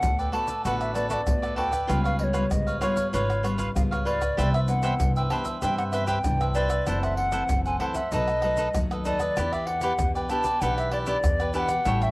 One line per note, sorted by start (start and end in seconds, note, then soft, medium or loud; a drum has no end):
0.00 0.30 D2 medium
0.00 0.62 A2 medium
0.00 0.28 A3 medium
0.00 0.29 B3 medium
0.00 0.29 F#4 medium
0.00 0.20 F#5 medium
0.00 pandeiro medium
0.00 tamborim medium
0.00 shaker medium
0.00 surdo medium
0.19 0.32 A4 soft
0.19 0.32 B4 soft
0.19 0.33 D5 soft
0.19 0.32 G5 medium
0.19 pandeiro soft
0.19 shaker soft
0.32 0.52 A3 medium
0.32 0.52 B3 medium
0.32 0.47 F#4 medium
0.32 0.52 F#4 medium
0.32 0.48 A4 medium
0.32 0.47 B4 medium
0.32 0.46 D5 medium
0.32 0.62 A5 medium
0.32 pandeiro medium
0.32 tamborim medium
0.47 0.64 A4 soft
0.47 0.63 B4 soft
0.47 0.63 D5 soft
0.47 pandeiro medium
0.47 shaker medium
0.47 surdo soft
0.64 1.18 A1 medium
0.64 1.24 D3 soft
0.64 0.91 A3 soft
0.64 0.92 B3 soft
0.64 0.93 F#4 medium
0.64 0.92 F#4 medium
0.64 0.94 A4 medium
0.64 0.94 B4 medium
0.64 0.95 D5 medium
0.64 0.79 F#5 medium
0.64 pandeiro medium
0.64 shaker medium
0.64 surdo medium
0.81 0.94 E5 medium
0.81 pandeiro soft
0.81 tamborim medium
0.81 shaker soft
0.94 1.14 A3 soft
0.94 1.14 B3 medium
0.94 1.08 F#4 soft
0.94 1.15 F#4 medium
0.94 1.09 A4 soft
0.94 1.10 B4 soft
0.94 1.09 D5 medium
0.94 1.10 D5 medium
0.94 pandeiro medium
0.94 tamborim medium
0.94 shaker medium
1.10 1.20 F#4 medium
1.10 1.20 A4 medium
1.10 1.20 B4 medium
1.10 1.20 D5 medium
1.10 1.54 D5 medium
1.10 1.15 E5 medium
1.10 pandeiro medium
1.10 shaker medium
1.10 surdo soft
1.26 1.81 D2 medium
1.26 1.86 A2 medium
1.26 1.67 A3 medium
1.26 1.67 B3 medium
1.26 1.67 F#4 medium
1.26 pandeiro medium
1.26 tamborim medium
1.26 shaker medium
1.26 surdo medium
1.42 1.55 A4 soft
1.42 1.56 B4 soft
1.42 1.57 D5 soft
1.42 pandeiro soft
1.42 tamborim medium
1.42 shaker soft
1.56 1.72 F#4 medium
1.56 1.72 A4 medium
1.56 1.71 B4 medium
1.56 1.70 D5 medium
1.56 2.01 G5 medium
1.56 pandeiro medium
1.56 surdo soft
1.71 1.88 A4 soft
1.71 1.87 B4 soft
1.71 1.87 D5 soft
1.71 pandeiro medium
1.71 tamborim medium
1.71 shaker medium
1.71 surdo soft
1.87 2.42 C#2 loud
1.87 2.49 C#3 soft
1.87 2.16 G3 soft
1.87 2.16 B3 soft
1.87 2.03 F4 medium
1.87 2.16 F4 medium
1.87 2.03 B4 medium
1.87 2.03 C#5 medium
1.87 2.03 F5 medium
1.87 pandeiro medium
1.87 tamborim medium
1.87 shaker medium
1.87 surdo medium
2.04 2.32 B4 soft
2.04 2.33 C#5 soft
2.04 2.33 F5 soft
2.04 2.19 F5 medium
2.04 pandeiro soft
2.04 tamborim medium
2.04 shaker soft
2.04 surdo soft
2.19 2.30 G3 soft
2.19 2.30 B3 medium
2.19 2.30 F4 medium
2.19 2.25 D#5 medium
2.19 pandeiro medium
2.24 2.53 C#5 medium
2.33 2.77 G3 medium
2.33 2.77 B3 medium
2.33 2.44 F4 medium
2.33 2.78 F4 medium
2.33 2.44 B4 medium
2.33 2.44 C#5 medium
2.33 2.44 F5 medium
2.33 pandeiro medium
2.33 tamborim medium
2.33 shaker medium
2.51 2.78 C#2 medium
2.51 3.11 G#2 medium
2.51 2.80 D#5 medium
2.51 pandeiro medium
2.51 tamborim medium
2.51 shaker medium
2.51 surdo medium
2.67 2.80 B4 soft
2.67 2.81 C#5 soft
2.67 2.81 F5 soft
2.67 pandeiro soft
2.67 shaker soft
2.81 3.23 G3 medium
2.81 3.23 B3 medium
2.81 2.96 F4 medium
2.81 3.23 F4 medium
2.81 2.97 B4 medium
2.81 3.11 C#5 medium
2.81 2.96 C#5 medium
2.81 2.94 F5 medium
2.81 pandeiro medium
2.81 tamborim medium
2.81 shaker medium
2.96 3.12 B4 soft
2.96 3.12 C#5 soft
2.96 3.11 F5 soft
2.96 pandeiro medium
2.96 shaker medium
2.96 surdo soft
3.12 3.67 G#1 medium
3.12 3.73 C#3 soft
3.12 3.42 F4 medium
3.12 3.42 B4 medium
3.12 3.46 C#5 medium
3.12 3.43 C#5 medium
3.12 3.44 F5 medium
3.12 pandeiro medium
3.12 shaker medium
3.12 surdo medium
3.30 pandeiro soft
3.30 tamborim medium
3.30 shaker soft
3.43 3.71 G3 medium
3.43 3.71 B3 medium
3.43 3.57 F4 soft
3.43 3.71 F4 medium
3.43 3.57 B4 soft
3.43 3.58 C#5 medium
3.43 3.58 F5 medium
3.43 pandeiro medium
3.43 tamborim medium
3.43 shaker medium
3.58 3.68 F4 medium
3.58 3.68 B4 medium
3.58 3.69 C#5 medium
3.58 3.69 F5 medium
3.58 pandeiro medium
3.58 shaker medium
3.58 surdo soft
3.75 4.29 C#2 medium
3.75 4.35 G#2 medium
3.75 4.16 G3 medium
3.75 4.16 B3 medium
3.75 4.17 F4 medium
3.75 3.82 F5 medium
3.75 pandeiro medium
3.75 tamborim medium
3.75 shaker medium
3.75 surdo medium
3.91 4.05 B4 soft
3.91 4.05 C#5 soft
3.91 4.06 F5 soft
3.91 pandeiro soft
3.91 tamborim medium
3.91 shaker soft
4.05 4.21 F4 medium
4.05 4.21 B4 medium
4.05 4.20 C#5 medium
4.05 4.50 D5 medium
4.05 4.19 F5 medium
4.05 pandeiro medium
4.20 4.37 B4 soft
4.20 4.36 C#5 soft
4.20 4.36 F5 soft
4.20 pandeiro medium
4.20 tamborim medium
4.20 shaker medium
4.20 surdo soft
4.37 4.91 C2 loud
4.37 4.97 C3 medium
4.37 4.57 E3 soft
4.37 4.57 B3 medium
4.37 4.57 D4 medium
4.37 4.52 G4 medium
4.37 4.53 B4 medium
4.37 4.53 C5 medium
4.37 4.53 E5 medium
4.37 pandeiro medium
4.37 tamborim medium
4.37 shaker medium
4.37 surdo medium
4.54 4.83 B4 soft
4.54 4.82 C5 soft
4.54 4.83 E5 soft
4.54 4.60 E5 medium
4.54 pandeiro soft
4.54 tamborim medium
4.54 shaker soft
4.54 surdo soft
4.68 4.78 E3 medium
4.68 4.78 B3 medium
4.68 4.79 D4 medium
4.68 5.12 F#5 medium
4.68 pandeiro medium
4.68 shaker medium
4.83 5.26 E3 medium
4.83 5.26 B3 medium
4.83 5.26 D4 medium
4.83 4.93 G4 medium
4.83 4.94 B4 medium
4.83 4.93 C5 medium
4.83 4.94 E5 medium
4.83 pandeiro medium
4.83 tamborim medium
4.83 shaker medium
5.00 5.27 C2 medium
5.00 5.59 G2 medium
5.00 pandeiro medium
5.00 tamborim medium
5.00 shaker medium
5.00 surdo medium
5.16 5.31 B4 soft
5.16 5.30 C5 soft
5.16 5.31 E5 soft
5.16 5.22 G5 medium
5.16 pandeiro soft
5.16 shaker soft
5.30 5.57 E3 medium
5.30 5.58 B3 medium
5.30 5.58 D4 medium
5.30 5.45 G4 medium
5.30 5.45 B4 medium
5.30 5.46 C5 medium
5.30 5.44 E5 medium
5.30 5.38 A5 medium
5.30 pandeiro medium
5.30 tamborim medium
5.45 5.61 B4 soft
5.45 5.62 C5 soft
5.45 5.61 E5 soft
5.45 pandeiro medium
5.45 shaker medium
5.45 surdo soft
5.62 6.16 G2 medium
5.62 6.22 C3 medium
5.62 5.81 E3 medium
5.62 5.81 B3 soft
5.62 5.81 D4 medium
5.62 5.91 G4 medium
5.62 5.92 B4 medium
5.62 5.92 C5 medium
5.62 5.93 E5 medium
5.62 5.77 G5 medium
5.62 pandeiro medium
5.62 shaker medium
5.62 surdo medium
5.78 5.84 F#5 medium
5.78 pandeiro soft
5.78 tamborim medium
5.78 shaker soft
5.92 6.12 E3 soft
5.92 6.12 B3 soft
5.92 6.12 D4 medium
5.92 6.06 G4 soft
5.92 6.07 B4 medium
5.92 6.06 C5 medium
5.92 6.07 E5 medium
5.92 pandeiro medium
5.92 tamborim medium
5.92 shaker medium
6.07 6.17 G4 medium
6.07 6.18 B4 medium
6.07 6.18 C5 medium
6.07 6.18 E5 medium
6.07 6.52 G5 medium
6.07 pandeiro medium
6.07 shaker medium
6.07 surdo soft
6.24 6.78 C2 medium
6.24 6.84 G2 medium
6.24 6.65 E3 medium
6.24 6.65 B3 medium
6.24 6.65 D4 medium
6.24 pandeiro medium
6.24 tamborim medium
6.24 shaker medium
6.24 surdo medium
6.41 6.55 B4 soft
6.41 6.54 C5 soft
6.41 6.55 E5 soft
6.41 pandeiro soft
6.41 tamborim medium
6.41 shaker soft
6.54 6.70 G4 medium
6.54 6.70 B4 medium
6.54 6.70 C5 medium
6.54 6.99 D5 medium
6.54 6.68 E5 medium
6.54 pandeiro medium
6.54 shaker medium
6.70 6.86 B4 soft
6.70 6.86 C5 soft
6.70 6.85 E5 soft
6.70 pandeiro medium
6.70 tamborim medium
6.70 shaker medium
6.70 surdo soft
6.87 7.40 F#1 medium
6.87 7.46 F#2 soft
6.87 7.29 E3 medium
6.87 7.29 A3 medium
6.87 7.29 C4 medium
6.87 7.02 E4 medium
6.87 7.02 A4 medium
6.87 7.02 C5 medium
6.87 7.02 F#5 medium
6.87 pandeiro medium
6.87 tamborim medium
6.87 shaker medium
6.87 surdo medium
7.03 7.32 A4 soft
7.03 7.32 C5 soft
7.03 7.16 E5 medium
7.03 7.32 F#5 soft
7.03 pandeiro soft
7.03 tamborim medium
7.03 shaker soft
7.03 surdo soft
7.17 7.61 F#5 medium
7.17 pandeiro medium
7.32 7.75 E3 medium
7.32 7.75 A3 medium
7.32 7.75 C4 medium
7.32 7.42 E4 medium
7.32 7.42 A4 medium
7.32 7.42 C5 medium
7.32 7.43 F#5 medium
7.32 pandeiro medium
7.32 tamborim medium
7.32 shaker medium
7.49 7.76 F#1 medium
7.49 8.09 F#2 medium
7.49 pandeiro medium
7.49 tamborim medium
7.49 shaker medium
7.49 surdo medium
7.65 7.80 A4 soft
7.65 7.80 C5 soft
7.65 7.80 F#5 soft
7.65 7.79 G#5 medium
7.65 pandeiro soft
7.65 shaker soft
7.79 7.99 E3 medium
7.79 7.99 A3 medium
7.79 7.99 C4 medium
7.79 7.95 E4 medium
7.79 7.95 A4 medium
7.79 7.95 C5 medium
7.79 7.85 F#5 medium
7.79 7.94 F#5 medium
7.79 pandeiro medium
7.79 tamborim medium
7.94 8.11 A4 soft
7.94 8.11 C5 soft
7.94 8.13 E5 medium
7.94 8.10 F#5 soft
7.94 pandeiro medium
7.94 shaker medium
7.94 surdo soft
8.11 8.65 B1 medium
8.11 8.71 B2 medium
8.11 8.30 F#3 medium
8.11 8.30 A3 soft
8.11 8.41 D#4 medium
8.11 8.31 D#4 medium
8.11 8.42 A4 medium
8.11 8.43 B4 medium
8.11 8.78 D#5 medium
8.11 8.43 D#5 medium
8.11 pandeiro medium
8.11 shaker medium
8.11 surdo medium
8.28 pandeiro soft
8.28 tamborim medium
8.28 shaker soft
8.42 8.69 F#3 soft
8.42 8.69 A3 soft
8.42 8.57 D#4 soft
8.42 8.70 D#4 medium
8.42 8.57 A4 soft
8.42 8.58 B4 soft
8.42 8.58 D#5 medium
8.42 pandeiro medium
8.42 tamborim medium
8.57 8.67 D#4 medium
8.57 8.67 A4 medium
8.57 8.68 B4 medium
8.57 8.68 D#5 medium
8.57 pandeiro medium
8.57 shaker medium
8.57 surdo soft
8.74 9.28 D#2 medium
8.74 9.34 F#2 medium
8.74 9.15 F#3 medium
8.74 9.15 A3 medium
8.74 9.15 D#4 medium
8.74 pandeiro medium
8.74 tamborim medium
8.74 shaker medium
8.74 surdo medium
8.91 9.05 A4 soft
8.91 9.05 B4 soft
8.91 9.05 D#5 soft
8.91 pandeiro soft
8.91 tamborim medium
8.91 shaker soft
9.05 9.20 D#4 medium
9.05 9.20 A4 medium
9.05 9.20 B4 medium
9.05 9.54 D5 medium
9.05 9.19 D#5 medium
9.05 pandeiro medium
9.05 shaker medium
9.05 surdo soft
9.20 9.36 A4 soft
9.20 9.35 B4 soft
9.20 9.35 D#5 soft
9.20 pandeiro soft
9.20 tamborim medium
9.20 shaker medium
9.20 surdo soft
9.37 9.90 E2 medium
9.37 9.96 E3 soft
9.37 9.66 B3 soft
9.37 9.66 D4 medium
9.37 9.51 E4 medium
9.37 9.51 G4 medium
9.37 9.67 G4 medium
9.37 9.52 B4 medium
9.37 9.52 D5 medium
9.37 pandeiro medium
9.37 tamborim medium
9.37 shaker medium
9.37 surdo medium
9.52 9.82 G4 soft
9.52 9.82 B4 soft
9.52 9.83 D5 soft
9.52 9.68 E5 medium
9.52 pandeiro soft
9.52 tamborim medium
9.52 shaker soft
9.52 surdo soft
9.66 10.14 F#5 medium
9.66 pandeiro medium
9.81 10.25 B3 medium
9.81 10.25 D4 medium
9.81 9.92 E4 medium
9.81 9.92 G4 medium
9.81 10.25 G4 medium
9.81 9.92 B4 medium
9.81 9.92 D5 medium
9.81 pandeiro medium
9.81 tamborim medium
9.81 shaker medium
9.99 10.25 E2 medium
9.99 10.58 B2 medium
9.99 pandeiro medium
9.99 tamborim medium
9.99 shaker medium
9.99 surdo medium
10.15 10.30 G4 soft
10.15 10.30 B4 soft
10.15 10.29 D5 soft
10.15 10.21 G5 medium
10.15 pandeiro soft
10.15 shaker soft
10.29 10.48 B3 medium
10.29 10.48 D4 medium
10.29 10.44 E4 medium
10.29 10.49 G4 medium
10.29 10.45 G4 medium
10.29 10.45 B4 medium
10.29 10.43 D5 medium
10.29 10.62 A5 medium
10.29 pandeiro medium
10.29 tamborim medium
10.29 shaker medium
10.44 10.60 G4 soft
10.44 10.60 B4 soft
10.44 10.59 D5 soft
10.44 pandeiro medium
10.44 shaker medium
10.44 surdo soft
10.61 11.14 B1 medium
10.61 11.20 E3 medium
10.61 11.03 B3 soft
10.61 11.03 D4 soft
10.61 10.90 E4 medium
10.61 10.91 G4 medium
10.61 11.04 G4 medium
10.61 10.92 B4 medium
10.61 10.92 D5 medium
10.61 10.77 F#5 medium
10.61 pandeiro medium
10.61 shaker medium
10.61 surdo medium
10.78 10.92 E5 medium
10.78 pandeiro soft
10.78 tamborim medium
10.78 shaker soft
10.92 11.05 E4 soft
10.92 11.06 G4 medium
10.92 11.06 B4 medium
10.92 10.99 D5 medium
10.92 11.07 D5 medium
10.92 pandeiro medium
10.92 tamborim medium
11.06 11.49 B3 medium
11.06 11.49 D4 medium
11.06 11.16 E4 medium
11.06 11.16 G4 medium
11.06 11.49 G4 medium
11.06 11.17 B4 medium
11.06 11.51 D5 medium
11.06 11.17 D5 medium
11.06 pandeiro medium
11.06 shaker medium
11.06 surdo soft
11.24 11.77 E2 medium
11.24 11.83 B2 medium
11.24 pandeiro medium
11.24 tamborim medium
11.24 shaker medium
11.24 surdo medium
11.40 11.53 G4 soft
11.40 11.54 B4 soft
11.40 11.54 D5 soft
11.40 pandeiro soft
11.40 tamborim medium
11.40 shaker soft
11.54 11.72 B3 medium
11.54 11.73 D4 medium
11.54 11.68 E4 medium
11.54 11.73 G4 medium
11.54 11.69 G4 medium
11.54 11.69 B4 medium
11.54 11.67 D5 medium
11.54 11.59 G#5 medium
11.54 pandeiro medium
11.54 shaker medium
11.54 surdo soft
11.58 12.05 F#5 medium
11.69 11.85 G4 soft
11.69 pandeiro medium
11.69 tamborim medium
11.69 shaker medium
11.69 surdo soft
11.85 12.11 A1 loud
11.85 12.11 A2 soft
11.85 12.11 G3 soft
11.85 12.11 C#4 soft
11.85 12.00 E4 medium
11.85 12.11 E4 soft
11.85 12.00 A4 medium
11.85 12.01 C#5 medium
11.85 12.01 G5 medium
11.85 pandeiro medium
11.85 tamborim medium
11.85 shaker medium
11.85 surdo medium
12.02 12.11 A4 soft
12.02 12.11 C#5 soft
12.02 12.11 E5 medium
12.02 12.11 G5 soft
12.02 pandeiro soft
12.02 tamborim medium
12.02 shaker soft
12.02 surdo soft